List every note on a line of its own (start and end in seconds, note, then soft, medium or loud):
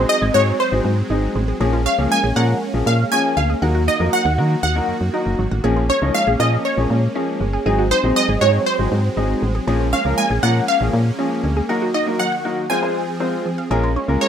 0.00 0.14 F#3 medium
0.00 1.59 F#3 medium
0.00 3.58 G#3 medium
0.00 0.15 C4 medium
0.00 1.58 C4 medium
0.00 0.15 D#4 medium
0.00 0.15 G#4 medium
0.09 0.20 G#3 medium
0.09 0.35 D#5 loud
0.22 0.31 G#1 loud
0.22 0.33 G#4 medium
0.34 0.53 G#2 medium
0.34 0.52 F#3 medium
0.34 0.52 C4 medium
0.34 0.52 D#4 medium
0.34 0.45 F#4 medium
0.34 0.53 G#4 medium
0.34 0.58 C#5 loud
0.60 1.31 C5 medium
0.72 0.81 G#1 loud
0.72 0.90 F#3 medium
0.72 0.90 C4 medium
0.72 0.90 D#4 medium
0.72 0.90 G#4 medium
0.85 1.03 G#2 loud
1.10 1.28 G#1 medium
1.10 1.34 F#3 medium
1.10 1.34 C4 medium
1.10 1.21 D#4 medium
1.10 1.34 D#4 medium
1.10 1.34 G#4 medium
1.35 1.53 A1 loud
1.35 1.46 G#3 medium
1.48 1.59 G#4 medium
1.60 1.87 A#1 loud
1.60 1.78 F3 medium
1.60 5.60 A#3 medium
1.60 1.78 A#3 medium
1.60 3.60 C#4 loud
1.60 1.78 C#4 medium
1.60 1.71 G#4 loud
1.60 1.79 G#4 loud
1.73 1.84 F4 medium
1.86 1.96 C#4 medium
1.86 2.12 F5 medium
1.98 2.07 C#2 medium
1.98 2.16 F3 medium
1.98 2.09 A#3 medium
1.98 2.16 A#3 medium
1.98 2.16 C#4 medium
1.98 2.16 G#4 medium
2.11 2.21 G#3 medium
2.11 2.35 G#5 loud
2.24 2.33 A#1 medium
2.24 2.34 G#4 medium
2.36 2.54 A#2 loud
2.36 2.54 F3 medium
2.36 2.54 A#3 medium
2.36 2.54 C#4 medium
2.36 2.47 F4 medium
2.36 2.54 A#4 medium
2.36 2.60 F#5 medium
2.74 2.83 A#1 loud
2.74 2.92 F3 medium
2.74 2.92 A#3 medium
2.74 2.92 C#4 medium
2.74 2.92 G#4 medium
2.87 3.04 A#2 loud
2.87 3.13 F5 medium
3.12 3.35 F3 medium
3.12 3.36 A#3 medium
3.12 3.22 C#4 medium
3.12 3.36 C#4 medium
3.12 3.36 G#4 medium
3.12 3.38 G#5 loud
3.37 3.55 D2 loud
3.37 3.48 G#3 medium
3.37 3.60 F5 medium
3.50 3.60 G#4 medium
3.62 3.89 D#2 loud
3.62 5.62 D#3 medium
3.62 3.80 F#3 medium
3.62 3.80 A#3 medium
3.62 3.80 D#4 medium
3.62 5.62 F#4 medium
3.62 3.80 A#4 medium
3.62 3.73 F#5 loud
3.75 3.85 F#4 medium
3.88 3.98 D#4 medium
3.88 3.99 D#5 loud
4.00 4.09 F2 medium
4.00 4.18 F#3 medium
4.00 4.18 A#3 medium
4.00 4.11 A#3 medium
4.00 4.18 D#4 medium
4.00 4.18 A#4 medium
4.13 4.23 F#3 medium
4.13 4.62 F#5 loud
4.25 4.39 D#2 loud
4.25 4.36 F#5 medium
4.38 4.56 D#3 loud
4.38 4.56 F#3 medium
4.38 4.56 A#3 medium
4.38 4.56 D#4 medium
4.38 4.49 F#4 medium
4.38 4.56 A#4 medium
4.63 4.81 D#2 medium
4.63 5.35 F#5 loud
4.75 4.93 F#3 medium
4.75 4.93 A#3 medium
4.75 4.94 D#4 medium
4.75 4.94 A#4 medium
4.88 4.93 F#2 soft
5.01 5.10 F#2 medium
5.13 5.37 F#3 medium
5.13 5.37 A#3 medium
5.13 5.37 D#4 medium
5.13 5.24 D#4 medium
5.13 5.37 A#4 medium
5.26 5.35 F#1 medium
5.39 5.48 G#1 loud
5.39 5.49 F#3 medium
5.51 5.60 A1 loud
5.51 5.62 F#5 medium
5.64 5.91 A#1 loud
5.64 5.82 F3 medium
5.64 11.65 G#3 medium
5.64 5.82 A#3 medium
5.64 7.64 A#3 medium
5.64 5.82 C#4 medium
5.64 7.64 C#4 medium
5.64 5.74 G#4 loud
5.64 5.82 G#4 medium
5.76 5.87 F4 medium
5.89 6.00 C#4 medium
5.89 6.13 C#5 loud
6.02 6.11 C#2 medium
6.02 6.20 F3 medium
6.02 6.12 A#3 medium
6.02 6.20 A#3 medium
6.02 6.20 C#4 medium
6.02 6.20 D#4 medium
6.14 6.25 G#3 medium
6.14 6.40 F5 loud
6.27 6.36 A#1 medium
6.27 6.38 G#4 medium
6.39 6.58 A#2 loud
6.39 6.57 F3 medium
6.39 6.57 A#3 medium
6.39 6.57 C#4 medium
6.39 6.50 F4 medium
6.39 6.58 G#4 medium
6.39 6.66 D#5 loud
6.65 7.37 C#5 medium
6.77 6.86 A#1 loud
6.77 6.95 F3 medium
6.77 6.95 A#3 medium
6.77 6.95 C#4 medium
6.77 6.95 G#4 medium
6.90 7.08 A#2 loud
7.15 7.39 F3 medium
7.15 7.39 A#3 medium
7.15 7.26 C#4 medium
7.15 7.39 C#4 medium
7.15 7.39 G#4 medium
7.41 7.58 G1 medium
7.41 7.51 G#3 medium
7.53 7.64 G#4 medium
7.66 7.93 G#1 loud
7.66 7.83 F#3 medium
7.66 9.65 F#3 medium
7.66 7.83 C4 medium
7.66 9.65 C4 medium
7.66 7.84 D#4 medium
7.66 7.76 G#4 loud
7.66 7.84 G#4 loud
7.79 7.89 F#4 medium
7.91 8.02 D#4 medium
7.91 8.17 C5 loud
8.04 8.13 A#1 medium
8.04 8.21 F#3 medium
8.04 8.21 C4 medium
8.04 8.14 C4 medium
8.04 8.21 D#4 medium
8.04 8.21 G#4 medium
8.16 8.27 G#3 medium
8.16 8.40 D#5 loud
8.29 8.38 G#1 loud
8.29 8.39 G#4 medium
8.41 8.59 G#2 loud
8.41 8.59 F#3 medium
8.41 8.59 C4 medium
8.41 8.59 D#4 medium
8.41 8.52 F#4 medium
8.41 8.59 G#4 medium
8.41 8.67 C#5 medium
8.66 9.38 C5 medium
8.79 8.88 G#1 loud
8.79 8.97 F#3 medium
8.79 8.97 C4 medium
8.79 8.97 D#4 medium
8.79 8.97 G#4 medium
8.92 9.10 G#2 loud
9.17 9.35 G#1 medium
9.17 9.40 F#3 medium
9.17 9.41 C4 medium
9.17 9.28 D#4 medium
9.17 9.41 D#4 medium
9.17 9.41 G#4 medium
9.42 9.60 A1 loud
9.42 9.53 G#3 medium
9.55 9.65 G#4 medium
9.67 9.94 A#1 loud
9.67 9.85 F3 medium
9.67 9.85 A#3 medium
9.67 12.67 A#3 medium
9.67 11.67 C#4 medium
9.67 9.85 C#4 medium
9.67 9.78 G#4 loud
9.67 9.85 G#4 medium
9.80 9.91 F4 medium
9.93 10.03 C#4 medium
9.93 10.16 F5 loud
10.05 10.14 C#2 medium
10.05 10.23 F3 medium
10.05 10.23 A#3 medium
10.05 10.16 A#3 medium
10.05 10.23 C#4 medium
10.05 10.23 A#4 medium
10.18 10.28 G#3 medium
10.18 10.44 G#5 loud
10.30 10.39 A#1 loud
10.30 10.41 G#4 medium
10.43 10.61 A#2 loud
10.43 10.61 F3 medium
10.43 10.61 A#3 medium
10.43 10.61 C#4 medium
10.43 10.54 F4 medium
10.43 10.61 A#4 medium
10.43 10.69 F#5 loud
10.68 11.40 F5 medium
10.81 10.90 A#1 loud
10.81 10.99 F3 medium
10.81 10.99 A#3 medium
10.81 10.99 C#4 medium
10.81 10.99 G#4 medium
10.93 11.11 A#2 loud
11.18 11.42 F3 medium
11.18 11.42 A#3 medium
11.18 11.42 C#4 medium
11.18 11.29 C#4 medium
11.18 11.42 G#4 medium
11.44 11.62 D2 medium
11.44 11.54 G#3 medium
11.57 11.67 G#4 medium
11.69 12.69 D#3 medium
11.69 11.87 F#3 medium
11.69 11.87 A#3 medium
11.69 11.87 D#4 medium
11.69 12.69 F#4 medium
11.69 11.87 A#4 loud
11.69 11.80 F#5 loud
11.82 11.92 F#4 medium
11.94 12.05 D#4 medium
11.94 12.20 D#5 medium
12.06 12.24 F#3 medium
12.06 12.24 A#3 medium
12.06 12.17 A#3 medium
12.06 12.25 D#4 medium
12.06 12.25 A#4 medium
12.19 12.30 F#3 medium
12.19 12.71 F#5 loud
12.32 12.43 F#5 medium
12.44 12.62 F#3 medium
12.44 12.62 A#3 medium
12.44 12.62 D#4 medium
12.44 12.55 F#4 medium
12.44 12.63 A#4 medium
12.69 13.70 F3 medium
12.69 12.80 G#3 medium
12.69 13.69 C4 medium
12.69 12.80 C4 medium
12.69 12.80 F4 medium
12.69 13.70 G#4 medium
12.69 12.80 C5 medium
12.69 13.41 G#5 loud
12.82 13.00 G#3 medium
12.82 13.00 C4 medium
12.82 13.00 F4 medium
12.82 13.00 C5 medium
13.20 13.44 G#3 medium
13.20 13.44 C4 medium
13.20 13.31 C4 medium
13.20 13.44 F4 medium
13.20 13.44 C5 medium
13.45 13.56 F3 medium
13.58 13.69 F5 medium
13.70 13.98 A#1 loud
13.70 13.88 G#3 medium
13.70 14.28 G#3 medium
13.70 13.88 A#3 medium
13.70 14.28 A#3 medium
13.70 14.28 C#4 medium
13.70 13.88 C#4 medium
13.70 13.89 F4 medium
13.70 13.81 G#4 loud
13.70 13.89 A#4 loud
13.83 13.94 F4 medium
13.96 14.07 C#4 medium
14.08 14.17 C#2 loud
14.08 14.26 G#3 medium
14.08 14.26 A#3 medium
14.08 14.19 A#3 medium
14.08 14.26 C#4 medium
14.08 14.26 F4 medium
14.08 14.26 A#4 medium
14.21 14.28 G#3 medium
14.21 14.28 C#5 medium